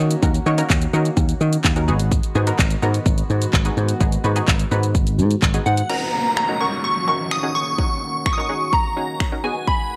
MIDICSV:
0, 0, Header, 1, 7, 480
1, 0, Start_track
1, 0, Key_signature, -6, "minor"
1, 0, Tempo, 472441
1, 231, Time_signature, 4, 2, 24, 8
1, 10122, End_track
2, 0, Start_track
2, 0, Title_t, "Synth bell"
2, 0, Program_c, 0, 98
2, 5750, Note_on_c, 0, 78, 76
2, 5990, Note_on_c, 0, 82, 89
2, 5997, Note_off_c, 0, 78, 0
2, 6436, Note_off_c, 0, 82, 0
2, 6469, Note_on_c, 0, 82, 86
2, 6693, Note_off_c, 0, 82, 0
2, 6711, Note_on_c, 0, 85, 87
2, 6818, Note_off_c, 0, 85, 0
2, 6950, Note_on_c, 0, 85, 98
2, 7178, Note_off_c, 0, 85, 0
2, 7190, Note_on_c, 0, 85, 92
2, 7429, Note_on_c, 0, 87, 96
2, 7437, Note_off_c, 0, 85, 0
2, 7671, Note_on_c, 0, 85, 95
2, 7677, Note_off_c, 0, 87, 0
2, 8380, Note_off_c, 0, 85, 0
2, 8392, Note_on_c, 0, 85, 91
2, 8462, Note_on_c, 0, 87, 79
2, 8464, Note_off_c, 0, 85, 0
2, 8533, Note_off_c, 0, 87, 0
2, 8533, Note_on_c, 0, 85, 91
2, 8873, Note_on_c, 0, 82, 84
2, 8881, Note_off_c, 0, 85, 0
2, 9318, Note_off_c, 0, 82, 0
2, 9590, Note_on_c, 0, 80, 74
2, 9813, Note_off_c, 0, 80, 0
2, 9830, Note_on_c, 0, 83, 85
2, 10122, Note_off_c, 0, 83, 0
2, 10122, End_track
3, 0, Start_track
3, 0, Title_t, "Synth stab"
3, 0, Program_c, 1, 62
3, 0, Note_on_c, 1, 61, 91
3, 0, Note_on_c, 1, 63, 81
3, 0, Note_on_c, 1, 66, 81
3, 0, Note_on_c, 1, 73, 100
3, 120, Note_off_c, 1, 61, 0
3, 121, Note_off_c, 1, 63, 0
3, 122, Note_off_c, 1, 66, 0
3, 123, Note_off_c, 1, 73, 0
3, 228, Note_on_c, 1, 61, 87
3, 230, Note_on_c, 1, 63, 83
3, 232, Note_on_c, 1, 66, 80
3, 234, Note_on_c, 1, 70, 100
3, 397, Note_off_c, 1, 61, 0
3, 398, Note_off_c, 1, 63, 0
3, 399, Note_off_c, 1, 66, 0
3, 400, Note_off_c, 1, 70, 0
3, 469, Note_on_c, 1, 61, 95
3, 470, Note_on_c, 1, 63, 87
3, 471, Note_on_c, 1, 66, 82
3, 473, Note_on_c, 1, 73, 105
3, 553, Note_off_c, 1, 61, 0
3, 554, Note_off_c, 1, 63, 0
3, 555, Note_off_c, 1, 66, 0
3, 556, Note_off_c, 1, 73, 0
3, 587, Note_on_c, 1, 61, 89
3, 589, Note_on_c, 1, 63, 86
3, 591, Note_on_c, 1, 66, 81
3, 592, Note_on_c, 1, 70, 100
3, 841, Note_off_c, 1, 61, 0
3, 841, Note_off_c, 1, 63, 0
3, 842, Note_off_c, 1, 66, 0
3, 843, Note_off_c, 1, 70, 0
3, 948, Note_on_c, 1, 61, 90
3, 950, Note_on_c, 1, 63, 82
3, 951, Note_on_c, 1, 66, 84
3, 953, Note_on_c, 1, 70, 97
3, 1536, Note_off_c, 1, 61, 0
3, 1537, Note_off_c, 1, 63, 0
3, 1538, Note_off_c, 1, 66, 0
3, 1539, Note_off_c, 1, 70, 0
3, 1789, Note_on_c, 1, 61, 89
3, 1790, Note_on_c, 1, 63, 82
3, 1792, Note_on_c, 1, 66, 83
3, 1793, Note_on_c, 1, 70, 99
3, 1897, Note_off_c, 1, 63, 0
3, 1899, Note_off_c, 1, 66, 0
3, 1908, Note_on_c, 1, 59, 98
3, 1909, Note_off_c, 1, 61, 0
3, 1910, Note_on_c, 1, 63, 91
3, 1911, Note_on_c, 1, 66, 91
3, 1912, Note_off_c, 1, 70, 0
3, 1913, Note_on_c, 1, 68, 106
3, 2293, Note_off_c, 1, 59, 0
3, 2294, Note_off_c, 1, 63, 0
3, 2295, Note_off_c, 1, 66, 0
3, 2295, Note_off_c, 1, 68, 0
3, 2388, Note_on_c, 1, 59, 93
3, 2389, Note_on_c, 1, 63, 85
3, 2391, Note_on_c, 1, 66, 83
3, 2393, Note_on_c, 1, 68, 105
3, 2473, Note_off_c, 1, 59, 0
3, 2474, Note_off_c, 1, 63, 0
3, 2475, Note_off_c, 1, 66, 0
3, 2475, Note_off_c, 1, 68, 0
3, 2507, Note_on_c, 1, 59, 92
3, 2509, Note_on_c, 1, 63, 82
3, 2511, Note_on_c, 1, 66, 86
3, 2512, Note_on_c, 1, 70, 104
3, 2760, Note_off_c, 1, 59, 0
3, 2761, Note_off_c, 1, 63, 0
3, 2762, Note_off_c, 1, 66, 0
3, 2763, Note_off_c, 1, 70, 0
3, 2867, Note_on_c, 1, 59, 95
3, 2869, Note_on_c, 1, 63, 85
3, 2871, Note_on_c, 1, 66, 85
3, 2873, Note_on_c, 1, 70, 105
3, 3456, Note_off_c, 1, 59, 0
3, 3457, Note_off_c, 1, 63, 0
3, 3458, Note_off_c, 1, 66, 0
3, 3459, Note_off_c, 1, 70, 0
3, 3706, Note_on_c, 1, 59, 89
3, 3709, Note_on_c, 1, 63, 81
3, 3709, Note_on_c, 1, 66, 82
3, 3711, Note_on_c, 1, 68, 102
3, 3960, Note_off_c, 1, 59, 0
3, 3961, Note_off_c, 1, 63, 0
3, 3961, Note_off_c, 1, 66, 0
3, 3962, Note_off_c, 1, 68, 0
3, 4067, Note_on_c, 1, 59, 90
3, 4069, Note_on_c, 1, 63, 80
3, 4070, Note_on_c, 1, 66, 81
3, 4072, Note_on_c, 1, 68, 96
3, 4236, Note_off_c, 1, 59, 0
3, 4237, Note_off_c, 1, 63, 0
3, 4238, Note_off_c, 1, 66, 0
3, 4239, Note_off_c, 1, 68, 0
3, 4306, Note_on_c, 1, 59, 91
3, 4309, Note_on_c, 1, 63, 83
3, 4310, Note_on_c, 1, 66, 85
3, 4311, Note_on_c, 1, 71, 102
3, 4392, Note_off_c, 1, 59, 0
3, 4393, Note_off_c, 1, 63, 0
3, 4394, Note_off_c, 1, 66, 0
3, 4395, Note_off_c, 1, 71, 0
3, 4426, Note_on_c, 1, 59, 91
3, 4427, Note_on_c, 1, 63, 88
3, 4429, Note_on_c, 1, 66, 82
3, 4431, Note_on_c, 1, 68, 101
3, 4680, Note_off_c, 1, 59, 0
3, 4680, Note_off_c, 1, 63, 0
3, 4682, Note_off_c, 1, 66, 0
3, 4682, Note_off_c, 1, 68, 0
3, 4788, Note_on_c, 1, 59, 89
3, 4790, Note_on_c, 1, 63, 82
3, 4791, Note_on_c, 1, 66, 82
3, 4793, Note_on_c, 1, 71, 106
3, 5376, Note_off_c, 1, 59, 0
3, 5377, Note_off_c, 1, 63, 0
3, 5378, Note_off_c, 1, 66, 0
3, 5379, Note_off_c, 1, 71, 0
3, 5627, Note_on_c, 1, 59, 86
3, 5629, Note_on_c, 1, 63, 82
3, 5630, Note_on_c, 1, 66, 81
3, 5632, Note_on_c, 1, 68, 97
3, 5880, Note_off_c, 1, 59, 0
3, 5881, Note_off_c, 1, 63, 0
3, 5882, Note_off_c, 1, 66, 0
3, 5883, Note_off_c, 1, 68, 0
3, 5988, Note_on_c, 1, 61, 70
3, 5990, Note_on_c, 1, 63, 67
3, 5992, Note_on_c, 1, 66, 64
3, 5993, Note_on_c, 1, 70, 79
3, 6409, Note_off_c, 1, 61, 0
3, 6410, Note_off_c, 1, 63, 0
3, 6411, Note_off_c, 1, 66, 0
3, 6411, Note_off_c, 1, 70, 0
3, 6588, Note_on_c, 1, 61, 75
3, 6589, Note_on_c, 1, 63, 68
3, 6591, Note_on_c, 1, 66, 71
3, 6593, Note_on_c, 1, 70, 81
3, 6673, Note_off_c, 1, 61, 0
3, 6673, Note_off_c, 1, 63, 0
3, 6675, Note_off_c, 1, 66, 0
3, 6675, Note_off_c, 1, 70, 0
3, 6708, Note_on_c, 1, 61, 73
3, 6710, Note_on_c, 1, 63, 68
3, 6712, Note_on_c, 1, 66, 66
3, 6713, Note_on_c, 1, 70, 77
3, 7045, Note_off_c, 1, 61, 0
3, 7045, Note_off_c, 1, 63, 0
3, 7046, Note_off_c, 1, 66, 0
3, 7047, Note_off_c, 1, 70, 0
3, 7187, Note_on_c, 1, 61, 73
3, 7189, Note_on_c, 1, 63, 63
3, 7191, Note_on_c, 1, 66, 65
3, 7192, Note_on_c, 1, 70, 76
3, 7440, Note_off_c, 1, 61, 0
3, 7441, Note_off_c, 1, 63, 0
3, 7442, Note_off_c, 1, 66, 0
3, 7443, Note_off_c, 1, 70, 0
3, 7547, Note_on_c, 1, 61, 74
3, 7549, Note_on_c, 1, 63, 66
3, 7551, Note_on_c, 1, 66, 67
3, 7552, Note_on_c, 1, 68, 81
3, 7800, Note_off_c, 1, 61, 0
3, 7801, Note_off_c, 1, 63, 0
3, 7802, Note_off_c, 1, 66, 0
3, 7803, Note_off_c, 1, 68, 0
3, 7907, Note_on_c, 1, 61, 71
3, 7909, Note_on_c, 1, 63, 64
3, 7910, Note_on_c, 1, 66, 65
3, 7912, Note_on_c, 1, 73, 79
3, 8328, Note_off_c, 1, 61, 0
3, 8329, Note_off_c, 1, 63, 0
3, 8330, Note_off_c, 1, 66, 0
3, 8330, Note_off_c, 1, 73, 0
3, 8507, Note_on_c, 1, 61, 73
3, 8509, Note_on_c, 1, 63, 67
3, 8511, Note_on_c, 1, 66, 67
3, 8512, Note_on_c, 1, 70, 78
3, 8593, Note_off_c, 1, 61, 0
3, 8593, Note_off_c, 1, 63, 0
3, 8595, Note_off_c, 1, 66, 0
3, 8595, Note_off_c, 1, 70, 0
3, 8627, Note_on_c, 1, 61, 73
3, 8629, Note_on_c, 1, 63, 67
3, 8631, Note_on_c, 1, 66, 66
3, 8632, Note_on_c, 1, 68, 83
3, 8964, Note_off_c, 1, 61, 0
3, 8965, Note_off_c, 1, 63, 0
3, 8966, Note_off_c, 1, 66, 0
3, 8967, Note_off_c, 1, 68, 0
3, 9108, Note_on_c, 1, 61, 71
3, 9110, Note_on_c, 1, 63, 66
3, 9111, Note_on_c, 1, 66, 65
3, 9113, Note_on_c, 1, 68, 81
3, 9361, Note_off_c, 1, 61, 0
3, 9362, Note_off_c, 1, 63, 0
3, 9362, Note_off_c, 1, 66, 0
3, 9363, Note_off_c, 1, 68, 0
3, 9469, Note_on_c, 1, 61, 72
3, 9470, Note_on_c, 1, 63, 70
3, 9472, Note_on_c, 1, 66, 63
3, 9473, Note_on_c, 1, 70, 77
3, 9578, Note_off_c, 1, 63, 0
3, 9580, Note_off_c, 1, 66, 0
3, 9589, Note_on_c, 1, 59, 82
3, 9590, Note_off_c, 1, 61, 0
3, 9590, Note_on_c, 1, 63, 72
3, 9592, Note_off_c, 1, 70, 0
3, 9592, Note_on_c, 1, 66, 72
3, 9593, Note_on_c, 1, 68, 85
3, 10122, Note_off_c, 1, 59, 0
3, 10122, Note_off_c, 1, 63, 0
3, 10122, Note_off_c, 1, 66, 0
3, 10122, Note_off_c, 1, 68, 0
3, 10122, End_track
4, 0, Start_track
4, 0, Title_t, "Analog synth pad"
4, 0, Program_c, 2, 89
4, 0, Note_on_c, 2, 51, 81
4, 0, Note_on_c, 2, 58, 79
4, 0, Note_on_c, 2, 61, 78
4, 0, Note_on_c, 2, 66, 86
4, 1874, Note_off_c, 2, 51, 0
4, 1874, Note_off_c, 2, 58, 0
4, 1874, Note_off_c, 2, 61, 0
4, 1875, Note_off_c, 2, 66, 0
4, 1910, Note_on_c, 2, 51, 88
4, 1910, Note_on_c, 2, 66, 95
4, 1911, Note_on_c, 2, 56, 81
4, 1911, Note_on_c, 2, 59, 79
4, 5950, Note_off_c, 2, 51, 0
4, 5950, Note_off_c, 2, 56, 0
4, 5950, Note_off_c, 2, 59, 0
4, 5950, Note_off_c, 2, 66, 0
4, 5990, Note_on_c, 2, 51, 80
4, 5990, Note_on_c, 2, 58, 69
4, 5990, Note_on_c, 2, 66, 86
4, 5991, Note_on_c, 2, 61, 71
4, 9554, Note_off_c, 2, 58, 0
4, 9554, Note_off_c, 2, 61, 0
4, 9589, Note_on_c, 2, 56, 74
4, 9590, Note_on_c, 2, 59, 74
4, 10122, Note_off_c, 2, 51, 0
4, 10122, Note_off_c, 2, 56, 0
4, 10122, Note_off_c, 2, 59, 0
4, 10122, Note_off_c, 2, 66, 0
4, 10122, End_track
5, 0, Start_track
5, 0, Title_t, "Slap bass"
5, 0, Program_c, 3, 36
5, 0, Note_on_c, 3, 51, 97
5, 145, Note_off_c, 3, 51, 0
5, 229, Note_on_c, 3, 39, 110
5, 386, Note_off_c, 3, 39, 0
5, 469, Note_on_c, 3, 51, 107
5, 625, Note_off_c, 3, 51, 0
5, 710, Note_on_c, 3, 39, 101
5, 866, Note_off_c, 3, 39, 0
5, 949, Note_on_c, 3, 51, 102
5, 1105, Note_off_c, 3, 51, 0
5, 1187, Note_on_c, 3, 39, 111
5, 1344, Note_off_c, 3, 39, 0
5, 1430, Note_on_c, 3, 51, 100
5, 1586, Note_off_c, 3, 51, 0
5, 1670, Note_on_c, 3, 39, 99
5, 1910, Note_on_c, 3, 32, 100
5, 1926, Note_off_c, 3, 39, 0
5, 2222, Note_off_c, 3, 32, 0
5, 2391, Note_on_c, 3, 44, 96
5, 2547, Note_off_c, 3, 44, 0
5, 2630, Note_on_c, 3, 32, 111
5, 2786, Note_off_c, 3, 32, 0
5, 2872, Note_on_c, 3, 44, 99
5, 3027, Note_off_c, 3, 44, 0
5, 3107, Note_on_c, 3, 32, 106
5, 3264, Note_off_c, 3, 32, 0
5, 3351, Note_on_c, 3, 44, 99
5, 3507, Note_off_c, 3, 44, 0
5, 3590, Note_on_c, 3, 32, 103
5, 3746, Note_off_c, 3, 32, 0
5, 3831, Note_on_c, 3, 44, 105
5, 3986, Note_off_c, 3, 44, 0
5, 4070, Note_on_c, 3, 32, 102
5, 4226, Note_off_c, 3, 32, 0
5, 4311, Note_on_c, 3, 44, 110
5, 4467, Note_off_c, 3, 44, 0
5, 4550, Note_on_c, 3, 32, 105
5, 4706, Note_off_c, 3, 32, 0
5, 4790, Note_on_c, 3, 44, 97
5, 5028, Note_on_c, 3, 32, 102
5, 5043, Note_off_c, 3, 44, 0
5, 5270, Note_on_c, 3, 44, 96
5, 5285, Note_off_c, 3, 32, 0
5, 5426, Note_off_c, 3, 44, 0
5, 5510, Note_on_c, 3, 32, 104
5, 5666, Note_off_c, 3, 32, 0
5, 5750, Note_on_c, 3, 44, 91
5, 5906, Note_off_c, 3, 44, 0
5, 10122, End_track
6, 0, Start_track
6, 0, Title_t, "Downlifter"
6, 0, Program_c, 4, 103
6, 5990, Note_on_c, 4, 60, 75
6, 9830, Note_off_c, 4, 60, 0
6, 10122, End_track
7, 0, Start_track
7, 0, Title_t, "Drums"
7, 108, Note_on_c, 9, 42, 78
7, 108, Note_on_c, 9, 82, 76
7, 209, Note_off_c, 9, 42, 0
7, 209, Note_off_c, 9, 82, 0
7, 230, Note_on_c, 9, 36, 114
7, 230, Note_on_c, 9, 82, 77
7, 331, Note_off_c, 9, 36, 0
7, 332, Note_off_c, 9, 82, 0
7, 350, Note_on_c, 9, 42, 52
7, 350, Note_on_c, 9, 82, 54
7, 452, Note_off_c, 9, 42, 0
7, 452, Note_off_c, 9, 82, 0
7, 469, Note_on_c, 9, 82, 49
7, 571, Note_off_c, 9, 82, 0
7, 590, Note_on_c, 9, 42, 76
7, 590, Note_on_c, 9, 82, 76
7, 691, Note_off_c, 9, 42, 0
7, 691, Note_off_c, 9, 82, 0
7, 710, Note_on_c, 9, 36, 123
7, 711, Note_on_c, 9, 39, 114
7, 712, Note_on_c, 9, 82, 78
7, 812, Note_off_c, 9, 36, 0
7, 813, Note_off_c, 9, 39, 0
7, 814, Note_off_c, 9, 82, 0
7, 829, Note_on_c, 9, 42, 59
7, 829, Note_on_c, 9, 82, 61
7, 930, Note_off_c, 9, 42, 0
7, 930, Note_off_c, 9, 82, 0
7, 950, Note_on_c, 9, 82, 58
7, 1052, Note_off_c, 9, 82, 0
7, 1070, Note_on_c, 9, 42, 66
7, 1070, Note_on_c, 9, 82, 65
7, 1171, Note_off_c, 9, 42, 0
7, 1171, Note_off_c, 9, 82, 0
7, 1187, Note_on_c, 9, 36, 117
7, 1188, Note_on_c, 9, 82, 78
7, 1289, Note_off_c, 9, 36, 0
7, 1289, Note_off_c, 9, 82, 0
7, 1308, Note_on_c, 9, 42, 53
7, 1308, Note_on_c, 9, 82, 53
7, 1410, Note_off_c, 9, 42, 0
7, 1410, Note_off_c, 9, 82, 0
7, 1430, Note_on_c, 9, 82, 55
7, 1532, Note_off_c, 9, 82, 0
7, 1551, Note_on_c, 9, 42, 78
7, 1551, Note_on_c, 9, 82, 80
7, 1652, Note_off_c, 9, 42, 0
7, 1652, Note_off_c, 9, 82, 0
7, 1668, Note_on_c, 9, 82, 70
7, 1669, Note_on_c, 9, 39, 113
7, 1670, Note_on_c, 9, 36, 105
7, 1770, Note_off_c, 9, 82, 0
7, 1771, Note_off_c, 9, 39, 0
7, 1772, Note_off_c, 9, 36, 0
7, 1789, Note_on_c, 9, 42, 53
7, 1789, Note_on_c, 9, 82, 54
7, 1890, Note_off_c, 9, 42, 0
7, 1890, Note_off_c, 9, 82, 0
7, 1911, Note_on_c, 9, 82, 55
7, 2013, Note_off_c, 9, 82, 0
7, 2027, Note_on_c, 9, 42, 77
7, 2027, Note_on_c, 9, 82, 77
7, 2129, Note_off_c, 9, 42, 0
7, 2129, Note_off_c, 9, 82, 0
7, 2150, Note_on_c, 9, 36, 112
7, 2150, Note_on_c, 9, 82, 78
7, 2251, Note_off_c, 9, 36, 0
7, 2252, Note_off_c, 9, 82, 0
7, 2270, Note_on_c, 9, 42, 53
7, 2270, Note_on_c, 9, 82, 55
7, 2371, Note_off_c, 9, 42, 0
7, 2371, Note_off_c, 9, 82, 0
7, 2389, Note_on_c, 9, 82, 48
7, 2491, Note_off_c, 9, 82, 0
7, 2509, Note_on_c, 9, 42, 74
7, 2509, Note_on_c, 9, 82, 74
7, 2611, Note_off_c, 9, 42, 0
7, 2611, Note_off_c, 9, 82, 0
7, 2630, Note_on_c, 9, 36, 121
7, 2631, Note_on_c, 9, 39, 118
7, 2632, Note_on_c, 9, 82, 78
7, 2732, Note_off_c, 9, 36, 0
7, 2733, Note_off_c, 9, 39, 0
7, 2734, Note_off_c, 9, 82, 0
7, 2748, Note_on_c, 9, 42, 59
7, 2748, Note_on_c, 9, 82, 62
7, 2850, Note_off_c, 9, 42, 0
7, 2850, Note_off_c, 9, 82, 0
7, 2870, Note_on_c, 9, 82, 56
7, 2971, Note_off_c, 9, 82, 0
7, 2990, Note_on_c, 9, 42, 66
7, 2990, Note_on_c, 9, 82, 67
7, 3091, Note_off_c, 9, 42, 0
7, 3091, Note_off_c, 9, 82, 0
7, 3107, Note_on_c, 9, 36, 125
7, 3108, Note_on_c, 9, 82, 80
7, 3209, Note_off_c, 9, 36, 0
7, 3209, Note_off_c, 9, 82, 0
7, 3228, Note_on_c, 9, 42, 54
7, 3228, Note_on_c, 9, 82, 55
7, 3330, Note_off_c, 9, 42, 0
7, 3330, Note_off_c, 9, 82, 0
7, 3351, Note_on_c, 9, 82, 54
7, 3452, Note_off_c, 9, 82, 0
7, 3471, Note_on_c, 9, 42, 82
7, 3471, Note_on_c, 9, 82, 78
7, 3573, Note_off_c, 9, 42, 0
7, 3573, Note_off_c, 9, 82, 0
7, 3589, Note_on_c, 9, 82, 68
7, 3590, Note_on_c, 9, 36, 110
7, 3590, Note_on_c, 9, 39, 110
7, 3690, Note_off_c, 9, 82, 0
7, 3692, Note_off_c, 9, 36, 0
7, 3692, Note_off_c, 9, 39, 0
7, 3709, Note_on_c, 9, 42, 52
7, 3709, Note_on_c, 9, 82, 52
7, 3810, Note_off_c, 9, 42, 0
7, 3810, Note_off_c, 9, 82, 0
7, 3832, Note_on_c, 9, 82, 55
7, 3933, Note_off_c, 9, 82, 0
7, 3948, Note_on_c, 9, 42, 77
7, 3948, Note_on_c, 9, 82, 77
7, 4049, Note_off_c, 9, 42, 0
7, 4049, Note_off_c, 9, 82, 0
7, 4070, Note_on_c, 9, 36, 114
7, 4070, Note_on_c, 9, 82, 77
7, 4171, Note_off_c, 9, 36, 0
7, 4172, Note_off_c, 9, 82, 0
7, 4190, Note_on_c, 9, 42, 55
7, 4190, Note_on_c, 9, 82, 53
7, 4291, Note_off_c, 9, 42, 0
7, 4291, Note_off_c, 9, 82, 0
7, 4309, Note_on_c, 9, 82, 50
7, 4411, Note_off_c, 9, 82, 0
7, 4429, Note_on_c, 9, 42, 72
7, 4429, Note_on_c, 9, 82, 73
7, 4530, Note_off_c, 9, 42, 0
7, 4530, Note_off_c, 9, 82, 0
7, 4550, Note_on_c, 9, 36, 123
7, 4551, Note_on_c, 9, 39, 112
7, 4552, Note_on_c, 9, 82, 80
7, 4652, Note_off_c, 9, 36, 0
7, 4653, Note_off_c, 9, 39, 0
7, 4654, Note_off_c, 9, 82, 0
7, 4668, Note_on_c, 9, 42, 62
7, 4668, Note_on_c, 9, 82, 61
7, 4770, Note_off_c, 9, 42, 0
7, 4770, Note_off_c, 9, 82, 0
7, 4790, Note_on_c, 9, 82, 55
7, 4891, Note_off_c, 9, 82, 0
7, 4910, Note_on_c, 9, 42, 65
7, 4910, Note_on_c, 9, 82, 66
7, 5012, Note_off_c, 9, 42, 0
7, 5012, Note_off_c, 9, 82, 0
7, 5027, Note_on_c, 9, 36, 120
7, 5028, Note_on_c, 9, 82, 80
7, 5129, Note_off_c, 9, 36, 0
7, 5129, Note_off_c, 9, 82, 0
7, 5149, Note_on_c, 9, 42, 52
7, 5149, Note_on_c, 9, 82, 52
7, 5250, Note_off_c, 9, 42, 0
7, 5250, Note_off_c, 9, 82, 0
7, 5271, Note_on_c, 9, 82, 54
7, 5372, Note_off_c, 9, 82, 0
7, 5391, Note_on_c, 9, 42, 77
7, 5391, Note_on_c, 9, 82, 82
7, 5493, Note_off_c, 9, 42, 0
7, 5493, Note_off_c, 9, 82, 0
7, 5508, Note_on_c, 9, 82, 66
7, 5509, Note_on_c, 9, 39, 113
7, 5510, Note_on_c, 9, 36, 104
7, 5609, Note_off_c, 9, 82, 0
7, 5611, Note_off_c, 9, 39, 0
7, 5612, Note_off_c, 9, 36, 0
7, 5628, Note_on_c, 9, 42, 55
7, 5628, Note_on_c, 9, 82, 55
7, 5730, Note_off_c, 9, 42, 0
7, 5730, Note_off_c, 9, 82, 0
7, 5751, Note_on_c, 9, 82, 57
7, 5852, Note_off_c, 9, 82, 0
7, 5866, Note_on_c, 9, 42, 77
7, 5866, Note_on_c, 9, 82, 77
7, 5968, Note_off_c, 9, 42, 0
7, 5968, Note_off_c, 9, 82, 0
7, 5989, Note_on_c, 9, 49, 73
7, 6091, Note_off_c, 9, 49, 0
7, 6471, Note_on_c, 9, 26, 107
7, 6573, Note_off_c, 9, 26, 0
7, 7430, Note_on_c, 9, 26, 100
7, 7531, Note_off_c, 9, 26, 0
7, 7910, Note_on_c, 9, 36, 104
7, 8011, Note_off_c, 9, 36, 0
7, 8390, Note_on_c, 9, 36, 116
7, 8391, Note_on_c, 9, 26, 107
7, 8492, Note_off_c, 9, 36, 0
7, 8493, Note_off_c, 9, 26, 0
7, 8868, Note_on_c, 9, 36, 110
7, 8969, Note_off_c, 9, 36, 0
7, 9350, Note_on_c, 9, 26, 100
7, 9350, Note_on_c, 9, 36, 99
7, 9452, Note_off_c, 9, 26, 0
7, 9452, Note_off_c, 9, 36, 0
7, 9830, Note_on_c, 9, 36, 102
7, 9931, Note_off_c, 9, 36, 0
7, 10122, End_track
0, 0, End_of_file